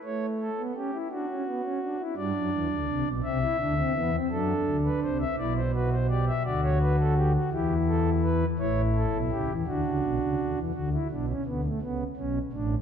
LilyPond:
<<
  \new Staff \with { instrumentName = "Pipe organ" } { \time 6/8 \key d \mixolydian \tempo 4. = 56 << { cis''8 a'8 g'8 fis'4. | d''4. e''4. | a'8. b'16 c''16 e''16 d''16 c''16 b'16 c''16 d''16 e''16 | d''16 cis''16 b'16 a'16 g'16 fis'16 g'8 a'8 b'8 |
cis''8 a'8 g'8 fis'4. | r2. | } \\ { a8. b16 cis'16 e'16 d'16 cis'16 b16 cis'16 d'16 e'16 | d'4. c'16 e'16 d'16 c'16 b16 c'16 | d'4. e'8 fis'8 g'8 | fis'4. e'4. |
e'4. d'4. | fis'16 e'16 d'16 cis'16 b16 a16 b8 cis'8 d'8 | } >> }
  \new Staff \with { instrumentName = "Pipe organ" } { \clef bass \time 6/8 \key d \mixolydian r2. | <g, g>16 <fis, fis>16 <e, e>16 <d, d>16 <c, c>16 <b,, b,>16 <c, c>8 <d, d>8 <e, e>8 | <fis, fis>8 <d, d>8 <c, c>8 <b,, b,>4. | <d, d>4. <e, e>4. |
<a,, a,>8. <b,, b,>16 <cis, cis>16 <e, e>16 <d, d>16 <cis, cis>16 <b,, b,>16 <cis, cis>16 <d, d>16 <e, e>16 | <d, d>8 <b,, b,>8 <d, d>8 <cis, cis>8 <b,, b,>8 <a,, a,>8 | }
>>